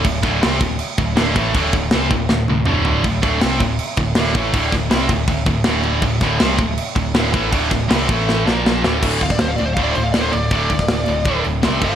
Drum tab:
CC |x-x-x-x-x-x-x-x-|x-x-x-x---------|x-x-x-x-x-x-x-x-|x-x-x-x-x-x-x-x-|
SD |--o-o-------o---|----o---o-------|--o-o-------o---|--o-o-------o---|
T1 |----------------|----------o-----|----------------|----------------|
T2 |----------------|------------o---|----------------|----------------|
FT |----------------|--------------o-|----------------|----------------|
BD |o-o---o---o---o-|o-o---o---------|o-o---o---o---o-|o-o---o-o-o-----|

CC |x-x-x-x-x-x-x-x-|x-x-x-x---------|x-x-x-x-x-x-x-x-|x-x-x-x-x-x-x-x-|
SD |--o-o-------o---|--o-o---o-o-o-o-|---oo-------o---|---oo-------o---|
T1 |----------------|----------------|----------------|----------------|
T2 |----------------|----------------|----------------|----------------|
FT |----------------|----------------|----------------|----------------|
BD |o-o---o---o---o-|o-o---o---------|o-oo----o-------|o-oo----o-----o-|